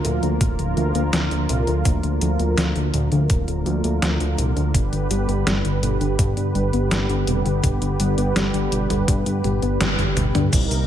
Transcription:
Already playing: D3 F3 A#3 F4 A#4
0.05 D2 A#2, closed hi-hat
0.23 D2 D3, closed hi-hat
0.41 D1 A#2, kick, closed hi-hat
0.59 D1 D3, closed hi-hat
0.77 D2 F3, closed hi-hat
0.95 D2 A#3, closed hi-hat
1.13 D2 F3, snare, closed hi-hat
1.31 D2 D3, closed hi-hat
1.49 C2 A#2, closed hi-hat
1.67 D2 D3, closed hi-hat
1.85 D2 A#2, kick, closed hi-hat
2.03 D2 D3, closed hi-hat
2.21 D2 F3, closed hi-hat
2.39 D2 A#3, closed hi-hat
2.58 D2 F3, snare, closed hi-hat
2.76 D2 D3, closed hi-hat
2.94 D2 A#2, closed hi-hat
3.12 D2 D3, closed hi-hat
3.30 D1 A#2, kick, closed hi-hat
3.48 D1 D3, closed hi-hat
3.66 D2 F3, closed hi-hat
3.84 D2 A#3, closed hi-hat
4.02 D2 F3, snare, closed hi-hat
4.20 D2 D3, closed hi-hat
4.38 C2 A#2, closed hi-hat
4.56 D2 D3, closed hi-hat
4.74 G1 B2 G3 B3 G4 B4, kick, closed hi-hat
4.92 G1 D3, closed hi-hat
5.11 G1 G3, closed hi-hat
5.29 G1 B3, closed hi-hat
5.47 G1 G3, snare, closed hi-hat
5.65 G1 D3, closed hi-hat
5.83 G1 B2, closed hi-hat
6.01 G1 D3, closed hi-hat
6.19 G2 B2, kick, closed hi-hat
6.37 G2 D3, closed hi-hat
6.55 G1 G3, closed hi-hat
6.73 G1 B3, closed hi-hat
6.91 G1 G3, snare, closed hi-hat
7.09 G1 D3, closed hi-hat
7.27 F1 B2, closed hi-hat
7.45 G1 D3, closed hi-hat
7.64 G1 B2, kick, closed hi-hat
7.82 G1 D3, closed hi-hat
8.00 G1 G3, closed hi-hat
8.18 G1 B3, closed hi-hat
8.36 G1 G3, snare, closed hi-hat
8.54 G1 D3, closed hi-hat
8.72 G1 B2, closed hi-hat
8.90 G1 D3, closed hi-hat, mid tom
9.08 G2 B2, kick, closed hi-hat
9.26 G2 D3, closed hi-hat
9.44 G1 G3, closed hi-hat, high tom
9.62 G1 B3, closed hi-hat
9.80 G1 G3, snare, closed hi-hat, mid tom
9.98 G1 D3, closed hi-hat, mid tom
10.16 G1 B2, closed hi-hat, mid tom
10.35 G2 D3, closed hi-hat, mid tom
10.53 C2 A#2 C3 G3 A#3 D#4 A#4, kick, closed hi-hat, crash, cabasa
10.71 C2 C3, closed hi-hat, cabasa

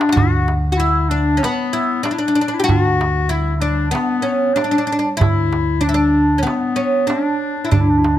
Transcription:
Already playing: D4
0.01 darbuka tek
0.09 F#4, darbuka ka
0.16 D2 F#4, darbuka dum
0.48 darbuka tek
0.72 F#4
0.77 E4
0.95 darbuka ka
1.09 D4
1.37 C#4
1.42 B3, darbuka tek
1.73 E4
2.03 D4, darbuka tek
2.11 D4 E4
2.18 D4
2.28 D4
2.35 D4
2.41 D4
2.48 D4
2.54 E4
2.59 G4
2.64 F#4
2.68 D2 F#4, darbuka dum
3.01 darbuka tek
3.29 E4
3.48 darbuka ka
3.56 D4 E4
3.62 D4
3.91 B3, darbuka tek
4.22 C#4
4.54 D4, darbuka tek
4.64 D4
4.71 D4
4.78 D4
4.87 D4
4.92 D4
4.99 D4
5.06 darbuka ka
5.17 D2 E4
5.21 darbuka dum
5.53 darbuka tek
5.81 D4
5.89 E4
5.94 D4
6.00 darbuka ka
6.38 C#4
6.43 B3
6.47 B3, darbuka tek
6.76 C#4
7.07 D4, darbuka tek
7.57 darbuka ka
7.65 E4
7.71 D2 D4, darbuka dum
7.81 E4
7.90 D4
7.98 E4
8.04 D4, darbuka tek

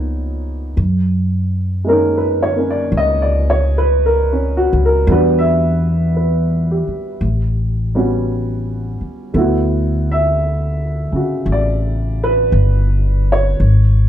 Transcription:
Already playing: C#2 F3 A#3 B3 D#4 F4 G#4 C#5
0.77 F#2
1.84 G#3 A#3
1.88 C#4 D#4 A#4
2.17 B4
2.43 C#5
2.56 A#3 C#4
2.70 D5
2.92 C#2
2.97 D#5
3.22 D5
3.50 C#5
3.78 B4
4.06 A#4
4.33 C#4
4.57 F#4
4.73 C#2
4.85 A#4
5.07 E2 G3 B3 D4
5.11 F#4 B4
5.39 E5
6.16 B4
6.71 G4
6.88 muted upright bass stroke
7.21 A1
7.95 G3 B3 C#4 F#4
9.01 muted upright bass stroke
9.34 D2 A3 B3 E4
9.38 F#4
10.12 E5
11.12 C#3 F#4, muted upright bass stroke
11.46 A1
11.52 D5
12.24 B4
12.52 G1
13.32 C#5
13.60 G#1

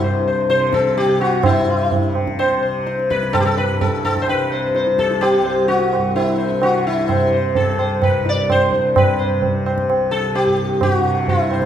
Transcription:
Already playing: C2 G2 C3
0.04 C5
0.27 C5
0.49 C3 C5, tabla te
0.73 A4, tabla ke
0.97 G4, tabla te
1.06 C3
1.20 F#4, tabla na
1.43 G2 E4 C5, tabla na, tabla ge
1.91 tabla tin, tabla ge
2.02 C3
2.15 tabla na
2.27 tabla ke
2.39 C5, tabla na
2.57 C3
2.62 C5
2.86 C5, tabla te
2.99 tabla te
3.10 C2 B4, tabla ke
3.23 tabla te
3.33 A4, tabla na, tabla ge
3.40 G4
3.46 A4
3.57 B4
3.72 G2
3.81 A4, tabla tin, tabla ge
4.05 A4, tabla na
4.17 tabla ke
4.22 C5
4.28 C3 B4, tabla na
4.52 C5
4.75 C5, tabla te
4.86 C3, tabla te
4.98 A4, tabla ke
5.11 tabla te
5.21 G4, tabla na
5.42 C2 C5
5.47 tabla na
5.68 F#4, tabla tin
5.93 G2, tabla na
6.16 E4, tabla na
6.38 C5
6.52 C3
6.62 F#4, tabla na
6.87 E4
7.08 C3 C5, tabla na, tabla ge
7.32 C5
7.55 A4, tabla tin, tabla ge
7.65 C2
7.79 C5, tabla na
8.02 B4, tabla na, tabla ge
8.21 G2
8.26 D5, tabla te
8.50 C5, tabla na, tabla ge
8.72 C5, tabla ge
8.78 C3
8.96 B4, tabla na, tabla ge
9.19 C5
9.34 C3
9.42 tabla tin, tabla ge
9.66 C5, tabla na
9.78 tabla ke
9.89 C2, tabla na
10.11 A4
10.35 G4, tabla na
10.45 G2
10.81 G4, tabla na, tabla ge
10.94 F#4
11.00 C3
11.28 E4, tabla tin, tabla ge
11.51 C5, tabla na
11.56 C3
11.62 tabla ke

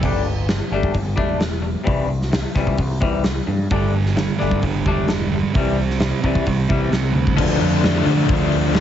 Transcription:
0.03 G1 G3 A3 D4, kick, crash
0.25 G3 A3
0.48 G3 A3, snare, open hi-hat
0.71 G1 G3 A3 D4
0.83 G1, kick
0.94 G1 G3 A3, kick, open hi-hat
1.16 E1 G3 A3 D4, kick
1.40 G3 A3, snare, open hi-hat
1.62 G3 A3
1.84 C2 C3 E3 G3, kick, open hi-hat
2.09 C3 E3
2.22 snare
2.32 C3 E3, snare, open hi-hat
2.55 C2 C3 E3 G3, kick, snare
2.67 C2, kick
2.77 C2 C3 E3, kick, open hi-hat
3.00 C2 C3 E3 G3, kick
3.24 C3 E3, snare, open hi-hat
3.47 G2 C3 E3
3.70 G1 G2 D3 G3 A3 D4, kick, open hi-hat
3.94 G3 A3
4.06 snare
4.16 G2 D3 G3 A3, snare, open hi-hat
4.38 G1 G2 D3 G3 A3 D4, snare
4.51 G1, kick
4.61 G1 G2 D3 G3 A3, kick, open hi-hat
4.86 E1 G3 A3 D4, kick
5.07 G2 D3 G3 A3, snare, open hi-hat
5.29 G2 D3 G3
5.33 G3 A3
5.53 C2 C3 E3 G3 C4, kick, open hi-hat
5.79 C3 E3
5.90 snare
5.99 C3 E3 G3 C4, snare, open hi-hat
6.22 C2 C3 E3 G3 C4, kick
6.35 C2, kick
6.46 C2 C3 E3 G3 C4, kick, open hi-hat
6.68 C2 C3 E3 G3, kick
6.91 C2 C3 E3 G3 C4, snare, open hi-hat
7.13 D2 C3 E3 G3 C4, high tom
7.27 kick
7.35 D3 F3 A3, kick, crash
7.39 D2 D4
7.58 F2 F3 A3 D4, open hi-hat
7.81 D3 F3 A3 D4, snare, open hi-hat
8.04 D3 F3 A3 D4, open hi-hat
8.26 D2 D3 F3 A3 D4, kick, open hi-hat
8.52 open hi-hat
8.73 D3 F3 A3 D4, snare, open hi-hat

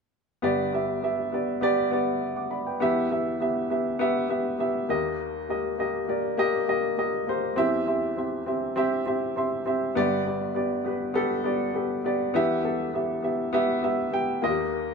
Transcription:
0.42 G1 G2 B3 G4 D5
0.73 B3 G4 E5
1.03 B3 G4 E5
1.32 B3 G4 D5
1.61 B3 G4 D5
1.91 B3 G4 D5
2.36 F#5 D6
2.51 D5 B5
2.67 B4 G5
2.80 E2 E3 B3 G4 E5
3.10 B3 G4 E5
3.40 B3 G4 E5
3.70 B3 G4 E5
3.99 B3 G4 E5
4.29 B3 G4 E5
4.59 B3 G4 E5
4.89 D#2 D#3 A#3 G4 D#5
5.49 A#3 G4 D#5
5.78 A#3 G4 D#5
6.08 A#3 G4 D5
6.37 A#3 G4 D#5
6.68 A#3 G4 D#5
6.97 A#3 G4 D#5
7.27 A#3 G4 C5
7.56 E2 E3 C4 G4 E5
7.86 C4 G4 E5
8.17 C4 G4 E5
8.46 C4 G4 E5
8.76 C4 G4 E5
9.06 C4 G4 E5
9.36 C4 G4 E5 C6
9.66 C4 G4 E5
9.95 G1 G2 B3 G4 D5
10.25 B3 G4 D5
10.55 B3 G4 D5
10.84 B3 G4 B4
11.14 B3 G4 A4
11.44 B3 G4 D5
11.74 B3 G4 A4
12.04 B3 G4 D5
12.34 E2 E3 B3 G4 E5
12.63 B3 G4 A4
12.93 B3 G4 E5
13.22 B3 G4 E5
13.53 B3 G4 E5
13.83 B3 G4 E5
14.12 B3 G4 G5
14.42 D#2 D#3 A#3 F4 D#5
14.49 G4

